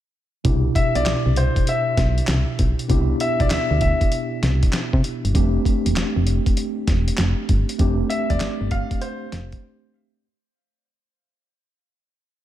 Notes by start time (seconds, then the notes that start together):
0.44 C2 B2 D4 E4 G4, kick, closed hi-hat
0.75 E5, kick, closed hi-hat
0.95 B1 D5, closed hi-hat
1.06 snare, clap, closed hi-hat
1.26 C2
1.36 C5, closed hi-hat
1.56 kick, closed hi-hat
1.67 E5, closed hi-hat
1.97 B1, kick, snare, closed hi-hat
2.18 closed hi-hat
2.27 C2, snare, clap, closed hi-hat
2.59 B1, kick, closed hi-hat
2.79 closed hi-hat
2.88 C2 B3 D4 E4 G4, kick, closed hi-hat
3.20 E5, closed hi-hat
3.40 B1 D5, kick, closed hi-hat
3.50 D2 E5, snare, clap, closed hi-hat
3.71 D2
3.81 E5, kick, closed hi-hat
4.01 kick, closed hi-hat
4.12 closed hi-hat
4.43 C2, snare, closed hi-hat
4.63 kick, closed hi-hat
4.73 snare, clap, closed hi-hat
4.93 C3, kick
5.04 closed hi-hat
5.25 G1, closed hi-hat
5.33 F1 G3 C4 D4 G4, kick, closed hi-hat
5.40 A3
5.65 kick, closed hi-hat
5.86 E1, closed hi-hat
5.96 F1, snare, clap, closed hi-hat
6.16 F1
6.27 closed hi-hat
6.46 kick, closed hi-hat
6.57 closed hi-hat
6.87 E1, kick, snare, closed hi-hat
7.08 closed hi-hat
7.17 F1, snare, clap, closed hi-hat
7.49 G1, kick, closed hi-hat
7.69 closed hi-hat
7.79 F1 A3 C4 D4 G4, kick, closed hi-hat
8.10 E5, closed hi-hat
8.30 E1 D5, kick, closed hi-hat
8.40 G1, snare, clap, closed hi-hat
8.61 G1
8.71 F5, kick, closed hi-hat
8.91 kick, closed hi-hat
9.01 C5, closed hi-hat
9.32 F1, snare, closed hi-hat
9.52 kick, closed hi-hat